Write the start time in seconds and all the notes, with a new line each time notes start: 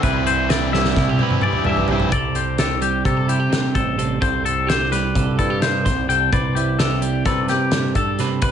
0.01 C2 C3 E3 G3 C4 E4 B4, kick, closed hi-hat
0.26 B4 C5, closed hi-hat
0.48 C3 E3 G3 C4 E4 D5, snare, closed hi-hat
0.71 G3 C4 E4 E5, snare
0.85 snare
0.96 C2 E4, kick, snare
1.07 G4, high tom
1.19 G3 C4 E4 B4, high tom
1.30 mid tom
1.41 E3 G3 C4 E4 D5, mid tom
1.46 G2
1.53 mid tom
1.65 G2 E5, mid tom
1.69 G4
1.77 floor tom
1.88 C3 E3 G3 C4 E4 C5, floor tom
1.92 E4
2.00 floor tom
2.12 C2 C3 A4 D5, kick, closed hi-hat
2.35 C4 G4, closed hi-hat
2.58 G4 A4, snare, closed hi-hat
2.81 G3 G4, closed hi-hat
3.05 C3 G4 A4, kick, closed hi-hat
3.17 A4
3.28 E4 G4, closed hi-hat
3.40 G4
3.50 C3, snare, closed hi-hat
3.75 A1 A4 C5, kick, closed hi-hat
3.98 C3 A4, closed hi-hat
4.21 C2 C3 A4 C5, kick, closed hi-hat
4.44 C4 A4, closed hi-hat
4.67 G4 C5, snare, closed hi-hat
4.92 G3 B4, snare, closed hi-hat
5.15 C2 A4, kick, closed hi-hat
5.39 G2 E4 A4, kick, closed hi-hat
5.50 G4
5.62 C3 C5, snare, closed hi-hat
5.85 C2 C5, kick, snare, closed hi-hat
6.08 C3 A4 G5, closed hi-hat
6.32 C2 C3 B4 D5, kick, closed hi-hat
6.55 E4 G4, closed hi-hat
6.79 G4 A4, snare, closed hi-hat
7.02 G3 G4, closed hi-hat
7.25 C3 A4 B4, kick, snare, closed hi-hat
7.48 G4, snare, closed hi-hat
7.71 G2, snare, closed hi-hat
7.95 G2 A4, kick, closed hi-hat
8.19 C3 B4, snare, closed hi-hat
8.42 C2 C3 B4, kick, closed hi-hat